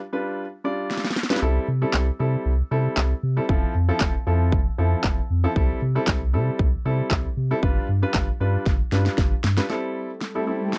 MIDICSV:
0, 0, Header, 1, 5, 480
1, 0, Start_track
1, 0, Key_signature, 0, "major"
1, 0, Tempo, 517241
1, 1321, Time_signature, 4, 2, 24, 8
1, 10007, End_track
2, 0, Start_track
2, 0, Title_t, "Grand piano"
2, 0, Program_c, 0, 0
2, 117, Note_on_c, 0, 55, 80
2, 119, Note_on_c, 0, 62, 76
2, 121, Note_on_c, 0, 65, 73
2, 122, Note_on_c, 0, 71, 91
2, 409, Note_off_c, 0, 55, 0
2, 409, Note_off_c, 0, 62, 0
2, 410, Note_off_c, 0, 65, 0
2, 411, Note_off_c, 0, 71, 0
2, 596, Note_on_c, 0, 55, 78
2, 598, Note_on_c, 0, 62, 76
2, 601, Note_on_c, 0, 65, 72
2, 602, Note_on_c, 0, 74, 89
2, 964, Note_off_c, 0, 55, 0
2, 965, Note_off_c, 0, 62, 0
2, 966, Note_off_c, 0, 65, 0
2, 967, Note_off_c, 0, 74, 0
2, 1205, Note_on_c, 0, 55, 82
2, 1206, Note_on_c, 0, 62, 76
2, 1209, Note_on_c, 0, 65, 76
2, 1209, Note_on_c, 0, 71, 89
2, 1274, Note_off_c, 0, 55, 0
2, 1274, Note_off_c, 0, 62, 0
2, 1276, Note_off_c, 0, 65, 0
2, 1276, Note_off_c, 0, 71, 0
2, 1317, Note_on_c, 0, 55, 89
2, 1318, Note_on_c, 0, 60, 78
2, 1320, Note_on_c, 0, 64, 82
2, 1322, Note_on_c, 0, 69, 93
2, 1536, Note_off_c, 0, 55, 0
2, 1536, Note_off_c, 0, 60, 0
2, 1537, Note_off_c, 0, 64, 0
2, 1538, Note_off_c, 0, 69, 0
2, 1685, Note_on_c, 0, 55, 89
2, 1686, Note_on_c, 0, 60, 78
2, 1688, Note_on_c, 0, 64, 75
2, 1689, Note_on_c, 0, 69, 94
2, 1900, Note_off_c, 0, 55, 0
2, 1901, Note_off_c, 0, 60, 0
2, 1902, Note_off_c, 0, 64, 0
2, 1902, Note_off_c, 0, 69, 0
2, 2036, Note_on_c, 0, 55, 78
2, 2038, Note_on_c, 0, 60, 74
2, 2039, Note_on_c, 0, 64, 72
2, 2042, Note_on_c, 0, 69, 87
2, 2328, Note_off_c, 0, 55, 0
2, 2329, Note_off_c, 0, 60, 0
2, 2330, Note_off_c, 0, 64, 0
2, 2331, Note_off_c, 0, 69, 0
2, 2516, Note_on_c, 0, 55, 80
2, 2518, Note_on_c, 0, 60, 76
2, 2520, Note_on_c, 0, 64, 74
2, 2521, Note_on_c, 0, 69, 89
2, 2884, Note_off_c, 0, 55, 0
2, 2885, Note_off_c, 0, 60, 0
2, 2886, Note_off_c, 0, 64, 0
2, 2887, Note_off_c, 0, 69, 0
2, 3123, Note_on_c, 0, 55, 84
2, 3126, Note_on_c, 0, 60, 76
2, 3126, Note_on_c, 0, 64, 77
2, 3128, Note_on_c, 0, 69, 91
2, 3193, Note_off_c, 0, 55, 0
2, 3194, Note_off_c, 0, 60, 0
2, 3194, Note_off_c, 0, 64, 0
2, 3195, Note_off_c, 0, 69, 0
2, 3236, Note_on_c, 0, 53, 91
2, 3238, Note_on_c, 0, 60, 80
2, 3239, Note_on_c, 0, 64, 79
2, 3241, Note_on_c, 0, 69, 93
2, 3455, Note_off_c, 0, 53, 0
2, 3456, Note_off_c, 0, 60, 0
2, 3457, Note_off_c, 0, 64, 0
2, 3457, Note_off_c, 0, 69, 0
2, 3605, Note_on_c, 0, 53, 86
2, 3607, Note_on_c, 0, 60, 79
2, 3607, Note_on_c, 0, 64, 80
2, 3609, Note_on_c, 0, 69, 95
2, 3820, Note_off_c, 0, 53, 0
2, 3821, Note_off_c, 0, 60, 0
2, 3821, Note_off_c, 0, 64, 0
2, 3822, Note_off_c, 0, 69, 0
2, 3959, Note_on_c, 0, 53, 81
2, 3961, Note_on_c, 0, 60, 74
2, 3961, Note_on_c, 0, 64, 74
2, 3964, Note_on_c, 0, 69, 90
2, 4250, Note_off_c, 0, 53, 0
2, 4251, Note_off_c, 0, 60, 0
2, 4251, Note_off_c, 0, 64, 0
2, 4252, Note_off_c, 0, 69, 0
2, 4438, Note_on_c, 0, 53, 80
2, 4440, Note_on_c, 0, 60, 70
2, 4441, Note_on_c, 0, 64, 75
2, 4443, Note_on_c, 0, 69, 91
2, 4805, Note_off_c, 0, 53, 0
2, 4806, Note_off_c, 0, 60, 0
2, 4807, Note_off_c, 0, 64, 0
2, 4807, Note_off_c, 0, 69, 0
2, 5046, Note_on_c, 0, 53, 84
2, 5048, Note_on_c, 0, 60, 75
2, 5049, Note_on_c, 0, 64, 80
2, 5050, Note_on_c, 0, 69, 95
2, 5114, Note_off_c, 0, 53, 0
2, 5115, Note_off_c, 0, 60, 0
2, 5116, Note_off_c, 0, 64, 0
2, 5116, Note_off_c, 0, 69, 0
2, 5157, Note_on_c, 0, 55, 87
2, 5159, Note_on_c, 0, 60, 78
2, 5159, Note_on_c, 0, 64, 83
2, 5161, Note_on_c, 0, 69, 97
2, 5375, Note_off_c, 0, 55, 0
2, 5376, Note_off_c, 0, 60, 0
2, 5376, Note_off_c, 0, 64, 0
2, 5378, Note_off_c, 0, 69, 0
2, 5524, Note_on_c, 0, 55, 85
2, 5526, Note_on_c, 0, 60, 79
2, 5528, Note_on_c, 0, 64, 83
2, 5529, Note_on_c, 0, 69, 96
2, 5739, Note_off_c, 0, 55, 0
2, 5740, Note_off_c, 0, 60, 0
2, 5742, Note_off_c, 0, 64, 0
2, 5742, Note_off_c, 0, 69, 0
2, 5877, Note_on_c, 0, 55, 83
2, 5878, Note_on_c, 0, 60, 77
2, 5881, Note_on_c, 0, 64, 72
2, 5883, Note_on_c, 0, 69, 88
2, 6169, Note_off_c, 0, 55, 0
2, 6169, Note_off_c, 0, 60, 0
2, 6171, Note_off_c, 0, 64, 0
2, 6172, Note_off_c, 0, 69, 0
2, 6359, Note_on_c, 0, 55, 81
2, 6361, Note_on_c, 0, 60, 75
2, 6362, Note_on_c, 0, 64, 76
2, 6363, Note_on_c, 0, 69, 91
2, 6726, Note_off_c, 0, 55, 0
2, 6727, Note_off_c, 0, 60, 0
2, 6727, Note_off_c, 0, 64, 0
2, 6728, Note_off_c, 0, 69, 0
2, 6966, Note_on_c, 0, 55, 85
2, 6967, Note_on_c, 0, 60, 78
2, 6969, Note_on_c, 0, 64, 79
2, 6971, Note_on_c, 0, 69, 97
2, 7034, Note_off_c, 0, 55, 0
2, 7035, Note_off_c, 0, 60, 0
2, 7036, Note_off_c, 0, 64, 0
2, 7037, Note_off_c, 0, 69, 0
2, 7077, Note_on_c, 0, 55, 89
2, 7079, Note_on_c, 0, 62, 81
2, 7079, Note_on_c, 0, 65, 80
2, 7082, Note_on_c, 0, 71, 96
2, 7295, Note_off_c, 0, 55, 0
2, 7296, Note_off_c, 0, 62, 0
2, 7296, Note_off_c, 0, 65, 0
2, 7298, Note_off_c, 0, 71, 0
2, 7446, Note_on_c, 0, 55, 88
2, 7447, Note_on_c, 0, 62, 78
2, 7448, Note_on_c, 0, 65, 81
2, 7451, Note_on_c, 0, 71, 96
2, 7660, Note_off_c, 0, 55, 0
2, 7661, Note_off_c, 0, 62, 0
2, 7662, Note_off_c, 0, 65, 0
2, 7663, Note_off_c, 0, 71, 0
2, 7798, Note_on_c, 0, 55, 80
2, 7800, Note_on_c, 0, 62, 74
2, 7802, Note_on_c, 0, 65, 74
2, 7804, Note_on_c, 0, 71, 86
2, 8089, Note_off_c, 0, 55, 0
2, 8090, Note_off_c, 0, 62, 0
2, 8091, Note_off_c, 0, 65, 0
2, 8092, Note_off_c, 0, 71, 0
2, 8281, Note_on_c, 0, 55, 81
2, 8284, Note_on_c, 0, 62, 73
2, 8284, Note_on_c, 0, 65, 74
2, 8286, Note_on_c, 0, 71, 86
2, 8647, Note_off_c, 0, 55, 0
2, 8648, Note_off_c, 0, 62, 0
2, 8648, Note_off_c, 0, 65, 0
2, 8649, Note_off_c, 0, 71, 0
2, 8884, Note_on_c, 0, 55, 83
2, 8886, Note_on_c, 0, 62, 76
2, 8887, Note_on_c, 0, 65, 73
2, 8890, Note_on_c, 0, 71, 87
2, 8953, Note_off_c, 0, 55, 0
2, 8954, Note_off_c, 0, 62, 0
2, 8955, Note_off_c, 0, 65, 0
2, 8956, Note_off_c, 0, 71, 0
2, 8997, Note_on_c, 0, 55, 85
2, 8999, Note_on_c, 0, 60, 79
2, 8999, Note_on_c, 0, 64, 77
2, 9001, Note_on_c, 0, 69, 94
2, 9365, Note_off_c, 0, 55, 0
2, 9365, Note_off_c, 0, 60, 0
2, 9366, Note_off_c, 0, 64, 0
2, 9367, Note_off_c, 0, 69, 0
2, 9604, Note_on_c, 0, 55, 79
2, 9606, Note_on_c, 0, 60, 75
2, 9608, Note_on_c, 0, 64, 78
2, 9609, Note_on_c, 0, 69, 87
2, 9673, Note_off_c, 0, 55, 0
2, 9674, Note_off_c, 0, 60, 0
2, 9675, Note_off_c, 0, 64, 0
2, 9676, Note_off_c, 0, 69, 0
2, 9715, Note_on_c, 0, 55, 78
2, 9716, Note_on_c, 0, 60, 73
2, 9718, Note_on_c, 0, 64, 76
2, 9719, Note_on_c, 0, 69, 83
2, 10007, Note_off_c, 0, 55, 0
2, 10007, Note_off_c, 0, 60, 0
2, 10007, Note_off_c, 0, 64, 0
2, 10007, Note_off_c, 0, 69, 0
2, 10007, End_track
3, 0, Start_track
3, 0, Title_t, "Ambient pad"
3, 0, Program_c, 1, 92
3, 9001, Note_on_c, 1, 55, 75
3, 9001, Note_on_c, 1, 57, 69
3, 9001, Note_on_c, 1, 64, 72
3, 9002, Note_on_c, 1, 60, 71
3, 9002, Note_on_c, 1, 69, 86
3, 10007, Note_off_c, 1, 55, 0
3, 10007, Note_off_c, 1, 57, 0
3, 10007, Note_off_c, 1, 60, 0
3, 10007, Note_off_c, 1, 64, 0
3, 10007, Note_off_c, 1, 69, 0
3, 10007, End_track
4, 0, Start_track
4, 0, Title_t, "Sub bass"
4, 0, Program_c, 2, 38
4, 1321, Note_on_c, 2, 36, 107
4, 1477, Note_off_c, 2, 36, 0
4, 1561, Note_on_c, 2, 48, 95
4, 1717, Note_off_c, 2, 48, 0
4, 1802, Note_on_c, 2, 36, 103
4, 1958, Note_off_c, 2, 36, 0
4, 2042, Note_on_c, 2, 48, 99
4, 2197, Note_off_c, 2, 48, 0
4, 2281, Note_on_c, 2, 36, 101
4, 2437, Note_off_c, 2, 36, 0
4, 2519, Note_on_c, 2, 48, 96
4, 2676, Note_off_c, 2, 48, 0
4, 2759, Note_on_c, 2, 36, 99
4, 2916, Note_off_c, 2, 36, 0
4, 3000, Note_on_c, 2, 48, 107
4, 3156, Note_off_c, 2, 48, 0
4, 3239, Note_on_c, 2, 29, 100
4, 3396, Note_off_c, 2, 29, 0
4, 3480, Note_on_c, 2, 41, 98
4, 3636, Note_off_c, 2, 41, 0
4, 3720, Note_on_c, 2, 29, 90
4, 3876, Note_off_c, 2, 29, 0
4, 3961, Note_on_c, 2, 41, 101
4, 4198, Note_on_c, 2, 29, 111
4, 4212, Note_off_c, 2, 41, 0
4, 4355, Note_off_c, 2, 29, 0
4, 4442, Note_on_c, 2, 41, 94
4, 4597, Note_off_c, 2, 41, 0
4, 4679, Note_on_c, 2, 29, 104
4, 4836, Note_off_c, 2, 29, 0
4, 4923, Note_on_c, 2, 41, 100
4, 5078, Note_off_c, 2, 41, 0
4, 5160, Note_on_c, 2, 36, 111
4, 5316, Note_off_c, 2, 36, 0
4, 5402, Note_on_c, 2, 48, 100
4, 5558, Note_off_c, 2, 48, 0
4, 5641, Note_on_c, 2, 36, 100
4, 5881, Note_on_c, 2, 48, 100
4, 5895, Note_off_c, 2, 36, 0
4, 6037, Note_off_c, 2, 48, 0
4, 6118, Note_on_c, 2, 36, 102
4, 6275, Note_off_c, 2, 36, 0
4, 6360, Note_on_c, 2, 48, 87
4, 6516, Note_off_c, 2, 48, 0
4, 6598, Note_on_c, 2, 36, 108
4, 6755, Note_off_c, 2, 36, 0
4, 6840, Note_on_c, 2, 48, 89
4, 6996, Note_off_c, 2, 48, 0
4, 7079, Note_on_c, 2, 31, 105
4, 7235, Note_off_c, 2, 31, 0
4, 7321, Note_on_c, 2, 43, 100
4, 7477, Note_off_c, 2, 43, 0
4, 7560, Note_on_c, 2, 31, 98
4, 7716, Note_off_c, 2, 31, 0
4, 7799, Note_on_c, 2, 43, 94
4, 7956, Note_off_c, 2, 43, 0
4, 8038, Note_on_c, 2, 31, 102
4, 8195, Note_off_c, 2, 31, 0
4, 8278, Note_on_c, 2, 43, 105
4, 8435, Note_off_c, 2, 43, 0
4, 8519, Note_on_c, 2, 31, 107
4, 8675, Note_off_c, 2, 31, 0
4, 8758, Note_on_c, 2, 43, 94
4, 8915, Note_off_c, 2, 43, 0
4, 10007, End_track
5, 0, Start_track
5, 0, Title_t, "Drums"
5, 840, Note_on_c, 9, 38, 56
5, 904, Note_off_c, 9, 38, 0
5, 904, Note_on_c, 9, 38, 54
5, 969, Note_off_c, 9, 38, 0
5, 969, Note_on_c, 9, 38, 68
5, 1025, Note_off_c, 9, 38, 0
5, 1025, Note_on_c, 9, 38, 63
5, 1080, Note_off_c, 9, 38, 0
5, 1080, Note_on_c, 9, 38, 82
5, 1144, Note_off_c, 9, 38, 0
5, 1144, Note_on_c, 9, 38, 74
5, 1207, Note_off_c, 9, 38, 0
5, 1207, Note_on_c, 9, 38, 92
5, 1264, Note_off_c, 9, 38, 0
5, 1264, Note_on_c, 9, 38, 85
5, 1357, Note_off_c, 9, 38, 0
5, 1793, Note_on_c, 9, 38, 90
5, 1799, Note_on_c, 9, 39, 116
5, 1885, Note_off_c, 9, 38, 0
5, 1892, Note_off_c, 9, 39, 0
5, 2754, Note_on_c, 9, 38, 83
5, 2760, Note_on_c, 9, 39, 104
5, 2847, Note_off_c, 9, 38, 0
5, 2853, Note_off_c, 9, 39, 0
5, 3240, Note_on_c, 9, 36, 108
5, 3332, Note_off_c, 9, 36, 0
5, 3711, Note_on_c, 9, 38, 90
5, 3717, Note_on_c, 9, 39, 115
5, 3720, Note_on_c, 9, 36, 104
5, 3804, Note_off_c, 9, 38, 0
5, 3810, Note_off_c, 9, 39, 0
5, 3813, Note_off_c, 9, 36, 0
5, 4198, Note_on_c, 9, 36, 111
5, 4291, Note_off_c, 9, 36, 0
5, 4673, Note_on_c, 9, 38, 83
5, 4679, Note_on_c, 9, 36, 114
5, 4679, Note_on_c, 9, 39, 108
5, 4766, Note_off_c, 9, 38, 0
5, 4772, Note_off_c, 9, 36, 0
5, 4772, Note_off_c, 9, 39, 0
5, 5160, Note_on_c, 9, 36, 103
5, 5253, Note_off_c, 9, 36, 0
5, 5633, Note_on_c, 9, 38, 93
5, 5639, Note_on_c, 9, 39, 117
5, 5641, Note_on_c, 9, 36, 106
5, 5725, Note_off_c, 9, 38, 0
5, 5732, Note_off_c, 9, 39, 0
5, 5734, Note_off_c, 9, 36, 0
5, 6118, Note_on_c, 9, 36, 114
5, 6211, Note_off_c, 9, 36, 0
5, 6594, Note_on_c, 9, 38, 84
5, 6599, Note_on_c, 9, 36, 118
5, 6600, Note_on_c, 9, 39, 105
5, 6686, Note_off_c, 9, 38, 0
5, 6692, Note_off_c, 9, 36, 0
5, 6693, Note_off_c, 9, 39, 0
5, 7079, Note_on_c, 9, 36, 107
5, 7172, Note_off_c, 9, 36, 0
5, 7552, Note_on_c, 9, 38, 96
5, 7558, Note_on_c, 9, 39, 118
5, 7560, Note_on_c, 9, 36, 104
5, 7644, Note_off_c, 9, 38, 0
5, 7651, Note_off_c, 9, 39, 0
5, 7653, Note_off_c, 9, 36, 0
5, 8038, Note_on_c, 9, 36, 112
5, 8039, Note_on_c, 9, 38, 55
5, 8131, Note_off_c, 9, 36, 0
5, 8132, Note_off_c, 9, 38, 0
5, 8279, Note_on_c, 9, 38, 69
5, 8371, Note_off_c, 9, 38, 0
5, 8406, Note_on_c, 9, 38, 63
5, 8499, Note_off_c, 9, 38, 0
5, 8518, Note_on_c, 9, 36, 122
5, 8518, Note_on_c, 9, 38, 82
5, 8611, Note_off_c, 9, 36, 0
5, 8611, Note_off_c, 9, 38, 0
5, 8759, Note_on_c, 9, 38, 99
5, 8852, Note_off_c, 9, 38, 0
5, 8885, Note_on_c, 9, 38, 89
5, 8978, Note_off_c, 9, 38, 0
5, 8998, Note_on_c, 9, 38, 48
5, 9090, Note_off_c, 9, 38, 0
5, 9478, Note_on_c, 9, 38, 54
5, 9570, Note_off_c, 9, 38, 0
5, 9958, Note_on_c, 9, 38, 58
5, 10007, Note_off_c, 9, 38, 0
5, 10007, End_track
0, 0, End_of_file